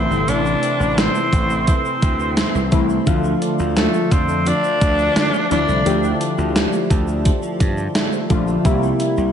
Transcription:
0.00 1.16 C3 medium
0.00 0.27 E3 medium
0.00 1.16 E3 medium
0.00 1.16 A3 medium
0.00 0.30 C4 loud
0.00 1.16 E4 medium
0.10 0.23 G1 medium
0.10 0.97 A3 medium
0.10 shaker soft
0.28 0.54 A1 loud
0.28 0.44 E3 medium
0.28 1.00 D4 loud
0.28 closed hi-hat medium
0.28 shaker medium
0.46 0.79 E3 medium
0.46 shaker medium
0.63 1.31 C4 medium
0.63 closed hi-hat medium
0.63 shaker soft
0.80 1.06 A1 medium
0.80 1.14 E3 medium
0.80 shaker soft
0.98 1.50 A3 medium
0.98 1.68 C4 medium
0.98 snare loud
0.98 closed hi-hat medium
0.98 shaker medium
1.15 1.66 E3 medium
1.15 shaker soft
1.33 1.72 A1 medium
1.33 2.01 C4 medium
1.33 kick medium
1.33 closed hi-hat medium
1.33 shaker soft
1.50 2.37 A3 medium
1.50 shaker soft
1.67 1.84 E3 medium
1.67 2.69 C4 medium
1.67 kick medium
1.67 closed hi-hat medium
1.67 shaker medium
1.85 2.18 E3 medium
1.85 shaker soft
2.02 2.42 D2 medium
2.02 2.71 C4 medium
2.02 kick medium
2.02 closed hi-hat medium
2.02 shaker soft
2.19 2.54 E3 medium
2.19 shaker soft
2.37 2.89 A3 medium
2.37 snare loud
2.37 closed hi-hat medium
2.37 shaker medium
2.55 2.68 C2 medium
2.55 3.06 E3 medium
2.55 shaker soft
2.72 2.98 C2 medium
2.72 3.03 C3 medium
2.72 3.03 E3 medium
2.72 3.03 A3 medium
2.72 3.14 C4 medium
2.72 3.03 E4 medium
2.72 kick medium
2.72 closed hi-hat medium
2.72 shaker soft
2.89 3.77 A3 medium
2.89 shaker soft
3.06 3.33 D2 loud
3.06 4.30 D3 medium
3.06 4.30 F3 medium
3.06 3.23 F3 medium
3.06 4.30 A3 medium
3.06 4.30 F4 medium
3.06 kick loud
3.06 closed hi-hat medium
3.06 shaker medium
3.24 3.58 F3 medium
3.24 shaker soft
3.42 4.10 D4 medium
3.42 closed hi-hat medium
3.42 shaker soft
3.59 3.86 D2 medium
3.59 3.93 F3 medium
3.59 shaker soft
3.76 4.28 A3 medium
3.76 4.14 A3 medium
3.76 snare loud
3.76 closed hi-hat medium
3.76 shaker medium
3.94 4.45 F3 medium
3.94 shaker medium
4.11 4.51 F2 medium
4.11 4.49 C4 medium
4.11 4.80 D4 medium
4.11 kick medium
4.11 closed hi-hat medium
4.11 shaker soft
4.29 5.15 A3 medium
4.29 shaker soft
4.46 4.63 F3 medium
4.46 5.52 D4 loud
4.46 closed hi-hat medium
4.46 shaker medium
4.64 4.97 F3 medium
4.64 shaker soft
4.81 5.08 D2 medium
4.81 5.50 D4 medium
4.81 kick medium
4.81 closed hi-hat medium
4.81 shaker medium
4.98 5.32 F3 medium
4.98 shaker soft
5.16 5.30 D3 medium
5.16 5.67 A3 medium
5.16 snare loud
5.16 closed hi-hat medium
5.16 shaker medium
5.34 5.84 F3 medium
5.34 shaker soft
5.51 5.64 D2 medium
5.51 5.82 D3 medium
5.51 5.82 F3 medium
5.51 5.82 A3 medium
5.51 6.19 D4 medium
5.51 6.18 D4 loud
5.51 5.82 E4 medium
5.51 closed hi-hat medium
5.51 shaker soft
5.68 5.82 C2 medium
5.68 6.54 A3 medium
5.68 shaker soft
5.86 6.12 D2 loud
5.86 7.09 D3 medium
5.86 6.02 F3 medium
5.86 7.09 F3 medium
5.86 7.09 A3 medium
5.86 7.09 G4 medium
5.86 closed hi-hat medium
5.86 shaker medium
6.03 6.37 F3 medium
6.03 shaker medium
6.20 6.89 D4 medium
6.20 closed hi-hat medium
6.20 shaker soft
6.38 6.64 D2 medium
6.38 6.72 F3 medium
6.38 shaker soft
6.55 7.07 A3 medium
6.55 snare medium
6.55 closed hi-hat medium
6.55 shaker medium
6.73 7.24 F3 medium
6.73 shaker soft
6.90 7.30 D2 medium
6.90 7.59 D4 medium
6.90 kick medium
6.90 closed hi-hat medium
6.90 shaker soft
7.08 7.94 A3 medium
7.08 shaker soft
7.25 7.41 F3 medium
7.25 kick medium
7.25 closed hi-hat medium
7.25 shaker medium
7.43 7.76 F3 medium
7.43 shaker soft
7.60 7.87 G2 medium
7.60 8.29 D4 medium
7.60 kick medium
7.60 closed hi-hat medium
7.60 shaker soft
7.78 8.12 F3 medium
7.78 shaker soft
7.95 8.46 A3 medium
7.95 snare loud
7.95 closed hi-hat medium
7.95 shaker medium
8.12 8.65 F3 medium
8.12 shaker medium
8.30 8.56 A#1 medium
8.30 8.61 D3 medium
8.30 8.61 F3 medium
8.30 8.61 A3 medium
8.30 8.72 D4 medium
8.30 8.61 F4 medium
8.30 kick medium
8.30 closed hi-hat medium
8.30 shaker soft
8.48 8.72 A3 medium
8.48 shaker soft
8.64 8.91 C2 loud
8.64 9.32 C3 medium
8.64 9.32 G3 medium
8.64 8.82 G3 medium
8.64 9.32 A#3 medium
8.64 9.32 E4 medium
8.64 kick loud
8.64 closed hi-hat medium
8.64 shaker medium
8.83 9.17 G3 medium
8.83 shaker soft
9.00 9.32 E4 medium
9.00 closed hi-hat medium
9.00 shaker soft
9.17 9.32 C2 loud
9.17 9.32 G3 medium
9.17 shaker soft

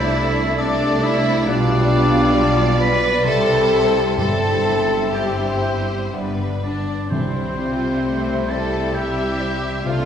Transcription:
0.00 1.44 C2 medium
0.00 1.44 C3 medium
0.00 1.51 C3 medium
0.00 0.55 A3 medium
0.00 0.57 A3 medium
0.00 1.22 C4 medium
0.00 0.58 D4 medium
0.00 1.01 D4 medium
0.00 0.57 E4 loud
0.00 0.58 E4 medium
0.00 0.33 A4 medium
0.00 0.16 C5 medium
0.00 1.51 C5 medium
0.00 0.11 D5 medium
0.00 0.56 D5 medium
0.00 0.57 D5 medium
0.00 0.60 E5 medium
0.12 1.46 A4 medium
0.12 0.56 D5 medium
0.35 0.78 A4 medium
0.57 1.46 A3 medium
0.57 1.02 D4 loud
0.57 1.03 D4 loud
0.57 1.47 D4 medium
0.57 1.45 D5 medium
0.57 2.33 D5 medium
0.57 1.46 D5 medium
0.57 1.06 D5 loud
0.80 1.51 A4 medium
1.02 3.28 D4 medium
1.02 1.47 E4 loud
1.02 1.48 E4 loud
1.02 1.36 E5 medium
1.24 1.50 C4 medium
1.46 3.25 B1 medium
1.46 3.28 B2 medium
1.46 3.25 B2 medium
1.46 3.23 G3 medium
1.46 2.95 G3 medium
1.46 2.80 D4 loud
1.46 2.78 D4 loud
1.46 3.25 F4 medium
1.46 2.36 B4 medium
1.46 3.22 D5 medium
1.46 2.78 D5 loud
1.46 2.96 F5 medium
1.68 3.28 B3 medium
1.91 3.28 F4 medium
2.12 3.93 G4 medium
2.34 2.77 D5 medium
2.34 3.90 D5 medium
2.56 3.00 F5 medium
2.79 3.24 B4 medium
2.79 3.25 B4 loud
2.79 3.26 B5 loud
3.01 3.28 F5 medium
3.23 4.17 C2 medium
3.23 4.21 C3 medium
3.23 4.16 C3 medium
3.23 4.16 G3 medium
3.23 4.14 G3 medium
3.23 4.18 E4 medium
3.23 4.03 A4 loud
3.23 4.17 A4 loud
3.23 4.17 C5 medium
3.23 4.17 E5 medium
3.23 3.90 A5 loud
3.47 4.40 G3 medium
3.70 4.63 E4 medium
3.94 4.88 G4 medium
4.17 6.13 G1 medium
4.17 5.60 G2 medium
4.17 6.13 G2 medium
4.17 6.12 G2 medium
4.17 5.13 G3 medium
4.17 5.12 C4 medium
4.17 5.13 E4 medium
4.17 5.13 A4 loud
4.17 5.14 A4 loud
4.17 5.12 C5 medium
4.17 5.13 E5 medium
4.17 5.16 A5 medium
4.22 6.60 E5 medium
4.41 7.33 G3 soft
4.65 6.17 E4 soft
4.90 6.86 G4 soft
5.14 6.12 G3 medium
5.14 6.12 C4 medium
5.14 6.12 E4 medium
5.14 6.13 G4 medium
5.14 6.14 G4 medium
5.14 5.63 C5 medium
5.14 6.13 C5 medium
5.14 6.12 E5 medium
5.14 6.14 G5 medium
5.64 6.18 C5 soft
5.89 6.18 E5 soft
6.13 6.88 G1 medium
6.13 7.14 G2 medium
6.13 6.89 G2 soft
6.13 6.88 G3 medium
6.13 6.76 B3 soft
6.13 6.89 D4 soft
6.13 6.77 D5 medium
6.17 6.92 B4 medium
6.38 7.14 D3 soft
6.62 7.07 D4 medium
6.62 7.15 D4 soft
6.62 7.08 D4 medium
6.62 7.11 D5 medium
6.87 7.79 G4 soft
7.08 9.81 C2 medium
7.08 9.83 C3 medium
7.08 8.46 C3 medium
7.08 9.81 G3 medium
7.08 8.01 G3 medium
7.08 8.49 C4 medium
7.08 7.56 E4 medium
7.08 8.51 C5 medium
7.08 9.81 E5 medium
7.12 9.82 C3 medium
7.12 8.51 C4 medium
7.12 8.92 C5 soft
7.35 9.62 G3 soft
7.58 9.39 E4 soft
7.58 8.05 F4 medium
8.04 8.49 A3 medium
8.04 9.85 E4 medium
8.04 8.53 C5 medium
8.27 8.71 E5 soft
8.49 9.86 G3 medium
8.49 8.95 A4 medium
8.49 8.96 A4 medium
8.49 8.94 C5 soft
8.49 8.96 D5 medium
8.49 8.96 A5 medium
8.73 9.89 E5 medium
8.94 9.85 G4 medium
8.94 10.05 C5 medium
8.94 9.43 E5 medium
8.94 9.84 E5 medium
8.94 9.85 G5 medium
9.18 9.89 G4 soft
9.40 9.88 E4 medium
9.40 9.89 C5 medium
9.63 9.89 G3 soft
9.84 10.05 C2 medium
9.84 10.05 C3 medium
9.84 10.05 A3 medium
9.84 10.05 D4 medium
9.84 10.05 F4 medium
9.84 10.05 F4 loud
9.84 10.05 A4 medium
9.84 10.05 D5 medium
9.84 10.05 F5 medium
9.89 10.05 F5 medium

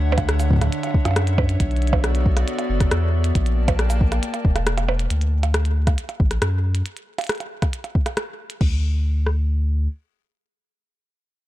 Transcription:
0.00 0.69 D2 loud
0.00 1.57 D3 medium
0.00 1.57 D4 medium
0.00 3.31 C#5 medium
0.00 3.31 E5 medium
0.00 1.57 F#5 medium
0.12 percussion blips loud
0.18 kick loud
0.18 closed hi-hat medium
0.18 percussion blips medium
0.29 cross-stick loud
0.29 closed hi-hat medium
0.40 closed hi-hat soft
0.40 percussion blips soft
0.40 cabasa medium
0.51 kick loud
0.53 kick medium
0.56 kick medium
0.59 kick medium
0.61 kick soft
0.61 cross-stick medium
0.61 closed hi-hat medium
0.61 percussion blips medium
0.64 kick soft
0.67 kick soft
0.70 kick soft
0.70 closed hi-hat medium
0.83 closed hi-hat soft
0.83 percussion blips soft
0.87 percussion blips soft
0.91 kick loud
0.91 percussion blips soft
1.05 1.57 F#2 loud
1.05 cross-stick medium
1.05 closed hi-hat medium
1.05 percussion blips medium
1.08 percussion blips soft
1.11 percussion blips soft
1.14 cross-stick loud
1.14 closed hi-hat medium
1.14 percussion blips soft
1.22 percussion blips soft
1.24 closed hi-hat soft
1.24 percussion blips soft
1.38 kick loud
1.38 percussion blips loud
1.49 closed hi-hat medium
1.60 2.45 B1 loud
1.60 3.33 B3 medium
1.60 3.33 F#4 medium
1.60 3.33 A4 medium
1.60 3.33 D5 medium
1.60 kick medium
1.60 closed hi-hat medium
1.71 closed hi-hat soft
1.76 closed hi-hat soft
1.82 closed hi-hat soft
1.87 closed hi-hat soft
1.93 kick loud
1.93 percussion blips loud
1.93 percussion blips medium
2.04 cross-stick loud
2.04 closed hi-hat medium
2.15 closed hi-hat soft
2.26 kick loud
2.37 cross-stick medium
2.37 closed hi-hat medium
2.37 percussion blips medium
2.48 closed hi-hat medium
2.59 closed hi-hat soft
2.59 percussion blips medium
2.70 2.88 F#1 medium
2.80 kick loud
2.80 cross-stick medium
2.80 closed hi-hat medium
2.91 3.32 E2 loud
2.91 cross-stick loud
2.91 closed hi-hat medium
3.24 closed hi-hat medium
3.35 4.20 A#1 loud
3.35 5.09 A#3 medium
3.35 5.09 A#4 medium
3.35 5.09 D5 medium
3.35 5.09 G5 medium
3.35 5.09 A5 medium
3.35 kick medium
3.35 closed hi-hat medium
3.46 closed hi-hat soft
3.68 kick loud
3.68 closed hi-hat medium
3.68 percussion blips loud
3.68 percussion blips medium
3.79 cross-stick loud
3.79 closed hi-hat medium
3.90 closed hi-hat soft
3.90 percussion blips soft
3.90 cabasa medium
4.01 kick loud
4.12 cross-stick medium
4.12 closed hi-hat medium
4.12 percussion blips medium
4.23 closed hi-hat medium
4.34 closed hi-hat soft
4.34 percussion blips medium
4.45 5.07 E1 medium
4.45 kick loud
4.56 cross-stick medium
4.56 closed hi-hat medium
4.56 percussion blips medium
4.67 cross-stick loud
4.67 closed hi-hat medium
4.78 closed hi-hat soft
4.78 percussion blips medium
4.88 percussion blips loud
4.99 closed hi-hat medium
5.10 5.95 D2 loud
5.10 closed hi-hat medium
5.21 closed hi-hat soft
5.43 closed hi-hat medium
5.43 percussion blips medium
5.54 cross-stick loud
5.54 closed hi-hat medium
5.65 closed hi-hat soft
5.87 kick loud
5.87 cross-stick medium
5.87 closed hi-hat medium
5.87 percussion blips medium
5.98 closed hi-hat medium
6.09 closed hi-hat soft
6.09 percussion blips soft
6.20 6.38 A1 medium
6.20 kick loud
6.31 cross-stick medium
6.31 closed hi-hat medium
6.42 6.83 F#2 medium
6.42 cross-stick loud
6.42 closed hi-hat medium
6.75 closed hi-hat medium
6.86 closed hi-hat medium
6.97 closed hi-hat soft
7.18 closed hi-hat soft
7.18 percussion blips medium
7.21 closed hi-hat soft
7.24 closed hi-hat soft
7.27 cross-stick loud
7.27 closed hi-hat soft
7.29 closed hi-hat medium
7.35 closed hi-hat soft
7.38 closed hi-hat soft
7.40 closed hi-hat soft
7.40 percussion blips soft
7.62 kick loud
7.62 cross-stick medium
7.62 closed hi-hat medium
7.62 percussion blips soft
7.73 closed hi-hat medium
7.84 closed hi-hat soft
7.84 percussion blips soft
7.95 kick loud
8.06 cross-stick medium
8.06 closed hi-hat soft
8.06 percussion blips medium
8.17 cross-stick loud
8.17 closed hi-hat medium
8.50 closed hi-hat medium
8.61 9.88 D2 medium
8.61 kick loud
8.61 crash medium
9.26 cross-stick medium

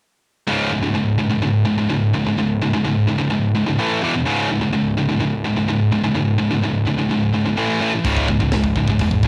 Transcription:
0.47 0.70 C#2 medium
0.47 0.70 G#2 medium
0.47 0.71 C#3 medium
0.71 0.83 C#2 medium
0.71 0.82 G#2 medium
0.83 0.94 C#2 medium
0.83 0.94 G#2 medium
0.95 1.17 C#2 medium
0.95 1.17 G#2 medium
1.19 1.30 C#2 medium
1.19 1.29 G#2 medium
1.30 1.41 C#2 medium
1.30 1.41 G#2 medium
1.42 1.64 C#2 medium
1.42 1.64 G#2 medium
1.66 1.77 C#2 medium
1.66 1.77 G#2 medium
1.78 1.88 C#2 medium
1.78 1.88 G#2 medium
1.89 2.11 C#2 medium
1.89 2.11 G#2 medium
2.13 2.24 C#2 medium
2.13 2.24 G#2 medium
2.25 2.36 C#2 medium
2.25 2.37 G#2 medium
2.37 2.59 C#2 medium
2.37 2.59 G#2 medium
2.62 2.73 C#2 medium
2.62 2.73 G#2 medium
2.74 2.84 C#2 medium
2.74 2.85 G#2 medium
2.86 3.06 C#2 medium
2.86 3.07 G#2 medium
3.08 3.19 C#2 medium
3.08 3.18 G#2 medium
3.19 3.31 C#2 medium
3.19 3.31 G#2 medium
3.32 3.53 C#2 medium
3.32 3.53 G#2 medium
3.55 3.67 C#2 medium
3.55 3.67 G#2 medium
3.68 3.79 C#2 medium
3.68 3.79 G#2 medium
3.79 4.01 A2 medium
3.79 4.02 E3 medium
3.79 4.02 A3 loud
4.03 4.13 E2 medium
4.03 4.13 B2 medium
4.03 4.14 E3 medium
4.14 4.26 E2 medium
4.14 4.26 B2 medium
4.27 4.49 C#2 medium
4.27 4.49 G#2 medium
4.27 4.50 C#3 loud
4.51 4.61 C#2 medium
4.51 4.61 G#2 medium
4.62 4.72 C#2 medium
4.62 4.73 G#2 medium
4.74 4.95 C#2 medium
4.74 4.95 G#2 medium
4.97 5.08 C#2 medium
4.97 5.08 G#2 medium
5.09 5.20 C#2 medium
5.09 5.20 G#2 medium
5.21 5.42 C#2 medium
5.21 5.42 G#2 medium
5.45 5.55 C#2 medium
5.45 5.55 G#2 medium
5.56 5.66 C#2 medium
5.56 5.67 G#2 medium
5.68 5.89 C#2 medium
5.68 5.89 G#2 medium
5.91 6.03 C#2 medium
5.91 6.02 G#2 medium
6.03 6.13 C#2 medium
6.03 6.13 G#2 medium
6.14 6.36 C#2 medium
6.14 6.36 G#2 medium
6.38 6.50 C#2 medium
6.38 6.50 G#2 medium
6.51 6.61 C#2 medium
6.51 6.61 G#2 medium
6.62 6.84 C#2 medium
6.62 6.84 G#2 medium
6.85 6.97 C#2 medium
6.85 6.97 G#2 medium
6.98 7.08 C#2 medium
6.98 7.09 G#2 medium
7.09 7.31 C#2 medium
7.09 7.31 G#2 medium
7.33 7.44 C#2 medium
7.33 7.44 G#2 medium
7.45 7.56 C#2 medium
7.45 7.57 G#2 medium
7.57 7.79 A2 medium
7.57 7.80 E3 loud
7.57 7.80 A3 loud
7.81 7.91 A2 medium
7.81 7.91 E3 medium
7.81 7.92 A3 medium
7.92 8.03 A2 medium
7.92 8.04 E3 medium
8.04 8.49 C#1 medium
8.04 8.26 C#2 medium
8.04 8.27 G#2 medium
8.04 8.27 C#3 medium
8.04 kick medium
8.04 open hi-hat medium
8.17 kick medium
8.28 8.40 C#2 medium
8.28 8.40 G#2 medium
8.28 kick medium
8.40 8.51 C#2 medium
8.40 8.52 G#2 medium
8.40 kick medium
8.52 8.74 C#1 medium
8.52 8.73 C#2 medium
8.52 8.74 G#2 medium
8.52 kick medium
8.52 snare loud
8.52 open hi-hat soft
8.64 kick medium
8.75 8.98 C#1 medium
8.75 8.88 C#2 medium
8.75 8.87 G#2 medium
8.75 kick medium
8.88 8.99 C#2 medium
8.88 8.99 G#2 medium
8.88 kick medium
8.99 9.22 E1 medium
8.99 9.21 C#2 medium
8.99 9.21 G#2 medium
8.99 kick medium
8.99 open hi-hat medium
9.11 kick medium
9.23 9.28 C#1 medium
9.23 9.28 C#2 medium
9.23 9.28 G#2 medium
9.23 kick medium

